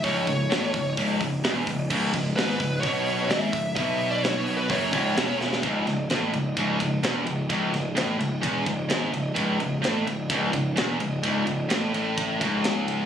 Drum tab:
CC |----------------|x---------------|----------------|----------------|
RD |----------------|----------------|----------------|x-x-x-x-x-x-x-x-|
HH |o-o-o-o-o-o-o-o-|--o-o-o-o-o-o-o-|o-o-o-o-o-o-o---|----------------|
SD |----oo------o---|----oo------o---|----o-------o-oo|--o-o-------o---|
BD |o-o---o-o-o---o-|o-o---o-o-----o-|o-------o-o-----|o-------o-o-----|

CC |----------------|----------------|----------------|
RD |x-x-x-x-x-x-x-x-|x-x-x-x-x-x-x-x-|x-x-x-x-x-x-x-x-|
HH |----------------|----------------|----------------|
SD |--o-o-------o---|----o-------o---|----o-------o---|
BD |o-------o-o-----|o-------o-o-----|o-------o-o-----|